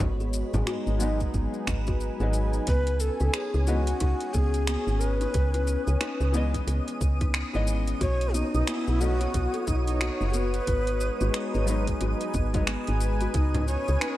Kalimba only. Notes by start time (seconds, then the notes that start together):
0.20 G#4
0.67 F#4
1.00 B3
1.34 B3
1.88 F#4
2.21 G#4
2.68 B3
3.21 D#4
3.55 E4
4.01 D#4
4.34 B3
4.68 B3
5.21 D#4
5.54 E4
6.01 D#4
6.34 B3
6.68 B3
7.21 D#4
7.54 E4
8.01 F#4
8.34 B3
8.68 B3
9.21 F#4
9.54 A4
10.01 F#4
10.34 B3
10.67 B3
11.21 F#4
11.54 G#4
12.01 F#4
12.34 B3
12.68 B3
13.22 F#4
13.55 E4
14.02 D#4